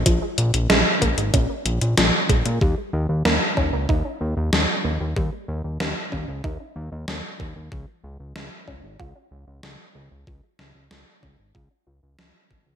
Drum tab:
HH |x-xxx-xxx-xxx-xx|----------------|----------------|----------------|
SD |----o-------o---|----o-------o---|----o-------o---|----o-------o---|
BD |o-----o-o-----o-|o-----o-o-------|o-----o-o-----o-|o-----o-o-------|

HH |----------------|
SD |--o-o-------o---|
BD |o-----o-o-----o-|